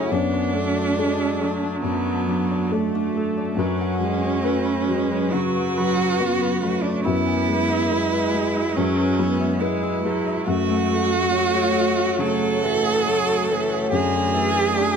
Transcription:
Already playing: felt piano C#3 A3 G#4, viola C#4, cello E4, harp F#4 A4 C#5 F#5
0.11 felt piano F#2, ambient pad F#3 F#4 A5, viola B3, cello D4, harp D4
0.33 harp F#4
0.53 viola A3, felt piano A3
0.76 harp D5
0.97 viola G#3, harp D4, felt piano A4
1.20 harp A4
1.41 viola F#3, felt piano A3
1.63 harp D4
1.83 felt piano F#2, cello B3, harp D5
2.06 harp F#4
2.27 felt piano F#3, harp D4
2.51 harp D5
2.71 viola A3, cello A3, felt piano A4, harp D5
2.95 harp D4
3.14 felt piano A3, harp A4
3.37 harp D5
3.56 felt piano F#2, viola F#3, cello C#4, ambient pad F#4, harp B4
3.60 ambient pad F#3 B4
3.81 harp F#5
4.00 felt piano F#3, viola G#3
4.22 harp C#6
4.42 viola A3, harp B4, felt piano B4
4.65 harp B5
4.88 felt piano F#3, viola G#3
5.11 harp B4
5.32 felt piano C#3, viola F#3, cello F#4, harp C#6
5.56 harp F#5
5.77 felt piano F#3, harp B4
6.00 harp C#6
6.20 viola B3, felt piano B4, harp C#6
6.42 harp B4
6.62 felt piano F#3, viola A3, harp B5
6.83 cello D4, harp C#6
7.04 felt piano F#2, ambient pad G#3 F#4 B4, viola B3, cello E4, harp E4
7.27 harp G#5
7.48 felt piano G#3
7.70 harp E5
7.91 viola G#3, harp E4, felt piano B4
8.13 harp B4
8.34 felt piano G#3
8.56 harp E4
8.76 felt piano F#2, viola F#3, cello C#4, harp E5
9.19 felt piano F#3, viola B3, harp E4
9.40 harp E5
9.60 viola G#3, cello E4, felt piano B4, harp E5
9.83 harp E4
10.04 viola F#3, felt piano G#3, harp B4
10.26 harp E5
10.46 felt piano F#2, viola A3, ambient pad A3 F#4 C#5, cello F#4, harp F#4
10.70 harp A3
10.90 felt piano A3
11.12 harp F#5
11.32 viola A3, harp F#4, felt piano C#5
11.55 harp C#5
11.75 felt piano A3
11.99 harp F#4
12.19 felt piano C#3, viola F#3, cello A4, harp F#5
12.62 viola E3, felt piano A3, harp F#4
12.86 harp F#5
13.05 viola F#3, felt piano C#5, harp F#5
13.29 harp F#4
13.48 viola E3, felt piano A3, harp C#5
13.73 harp F#5
13.91 felt piano F#2, viola D3, ambient pad A3 F#4 D5, harp D4, cello G#4
14.16 harp F#4
14.33 viola E3, felt piano A3
14.58 harp D5
14.77 viola F#3, harp D4, felt piano D5

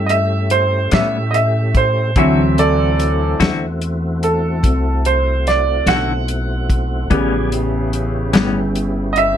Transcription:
Already playing: upright bass G2, tonewheel organ A3 C#4 E4 G4
0.06 upright piano D#5 E5, closed hi-hat
0.50 upright piano C5, closed hi-hat
0.91 upright bass A2, clean electric guitar A2 G3 B3 C#4, upright piano E5, snare, closed hi-hat
1.31 upright piano D#5 E5, closed hi-hat
1.75 upright piano C5, kick, closed hi-hat
2.16 upright bass D2, clean electric guitar D3 C4 E4 F#4, upright piano E3 F#3 C4 E5, tonewheel organ A3 C4 E4 F#4, kick, closed hi-hat
2.58 upright piano A4 D5, closed hi-hat
3.00 closed hi-hat
3.40 upright bass E2, clean electric guitar D3 C4 E4 F#4, snare, closed hi-hat
3.82 closed hi-hat
4.23 upright piano A4, closed hi-hat
4.63 upright bass C2, kick, closed hi-hat
5.05 upright piano C5, closed hi-hat
5.47 upright piano D5, snare, closed hi-hat
5.86 upright bass B1, clean electric guitar D3 C4 E4 F#4, upright piano F#5, snare, closed hi-hat
6.28 closed hi-hat
6.70 kick, closed hi-hat
7.10 upright bass A1, clean electric guitar A2 G3 B3 C#4, upright piano C#3 G3 B3, tonewheel organ F3 B3 D5 G#5, kick, closed hi-hat
7.52 tonewheel organ B3 C#4 E4 G4, closed hi-hat
7.93 closed hi-hat
8.33 upright bass G1, clean electric guitar A2 G3 B3 C#4, snare, closed hi-hat
8.75 closed hi-hat
9.13 upright piano D#5, closed hi-hat
9.18 upright piano E5

